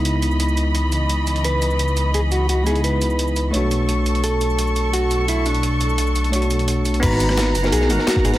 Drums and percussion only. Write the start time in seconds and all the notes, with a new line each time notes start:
0.05 closed hi-hat
0.22 closed hi-hat, shaker
0.31 shaker
0.40 closed hi-hat
0.48 shaker
0.57 closed hi-hat, shaker
0.75 closed hi-hat
0.92 closed hi-hat, shaker
1.09 closed hi-hat
1.27 closed hi-hat, shaker
1.36 closed hi-hat
1.44 closed hi-hat
1.62 closed hi-hat, shaker
1.71 shaker
1.79 closed hi-hat
1.88 shaker
1.97 closed hi-hat, shaker
2.14 closed hi-hat
2.32 closed hi-hat, shaker
2.49 closed hi-hat
2.67 closed hi-hat, shaker
2.75 closed hi-hat
2.84 closed hi-hat
3.02 closed hi-hat, shaker
3.10 shaker
3.19 closed hi-hat
3.28 shaker
3.36 closed hi-hat, shaker
3.54 closed hi-hat
3.71 closed hi-hat, shaker
3.89 closed hi-hat
4.06 closed hi-hat, shaker
4.15 closed hi-hat
4.24 closed hi-hat
4.41 closed hi-hat, shaker
4.50 shaker
4.59 closed hi-hat
4.67 shaker
4.76 closed hi-hat, shaker
4.93 closed hi-hat
5.11 closed hi-hat, shaker
5.28 closed hi-hat
5.46 closed hi-hat, shaker
5.55 closed hi-hat
5.63 closed hi-hat
5.81 closed hi-hat, shaker
5.89 shaker
5.98 closed hi-hat
6.07 shaker
6.16 closed hi-hat, shaker
6.24 closed hi-hat
6.33 closed hi-hat
6.42 closed hi-hat, shaker
6.51 closed hi-hat, shaker
6.59 closed hi-hat
6.68 closed hi-hat
6.85 closed hi-hat, shaker
6.94 closed hi-hat
7.03 kick, closed hi-hat, crash
7.11 snare
7.20 closed hi-hat, open hi-hat, shaker
7.29 cross-stick, snare, shaker
7.37 snare, closed hi-hat
7.55 closed hi-hat, shaker
7.64 snare, shaker
7.72 closed hi-hat
7.81 snare
7.90 closed hi-hat, shaker
7.99 snare
8.07 snare, closed hi-hat
8.16 kick, snare
8.24 cross-stick, closed hi-hat, shaker
8.34 snare, closed hi-hat